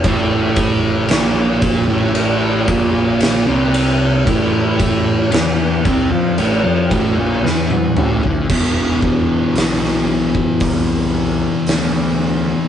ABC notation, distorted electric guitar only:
X:1
M:4/4
L:1/16
Q:1/4=57
K:Ador
V:1 name="Distorted electric guitar" clef=bass
A,,4 ^A,,3 =A,,3 ^A,,3 C,3 | A,,4 E,2 C, =F, A,, F, A,, ^A,, E,2 =A,, D, | [E,,B,,E,]16 |]